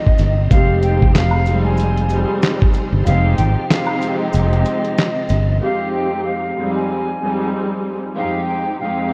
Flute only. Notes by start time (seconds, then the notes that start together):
Already playing: D#5
0.51 F5
0.83 G5
1.16 F5
1.64 G#5
3.06 F5
3.38 G5
3.70 F5
4.19 D#5
5.63 F5
5.93 G5
6.24 F5
6.75 G#5
8.16 F5
8.47 G5
8.80 F5